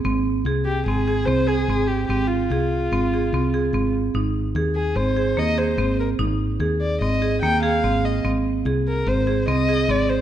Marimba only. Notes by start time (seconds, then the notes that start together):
0.05 C4
0.46 G#4
0.88 C4
1.08 G#4
1.27 C4
1.49 G#4
1.70 C4
2.10 C4
2.52 G#4
2.93 C4
3.14 G#4
3.34 C4
3.54 G#4
3.74 C4
4.15 D#4
4.56 G#4
4.97 C4
5.17 G#4
5.37 A#3
5.58 G#4
5.79 C4
6.19 D#4
6.60 G#4
7.02 C4
7.22 G#4
7.43 A#3
7.63 G#4
7.84 C4
8.25 C4
8.66 G#4
9.07 C4
9.27 G#4
9.48 C4
9.69 G#4
9.89 C4